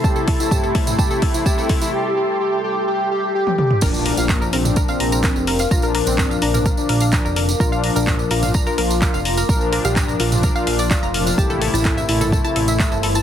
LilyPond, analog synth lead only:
\new Staff \with { instrumentName = "Analog synth lead" } { \time 4/4 \key bes \lydian \tempo 4 = 127 g'8 r16 e'16 g'8 r16 e'16 g'8 r16 e'16 g'8 r16 e'16 | g'8 g'8 g'8 g'8 g'8 g'8 g'8 g'8 | d'8 r16 bes8 r16 c'8 r16 c'4. r16 | f'8 r16 c'8 r16 d'8 r16 d'4. r16 |
f'8 r16 d'8 r16 f'8 r16 f'4. r16 | bes'8 r16 g'8 r16 f'8 r16 f'4. r16 | g'8 r16 e'8 r16 e'8 r16 e'4. r16 | }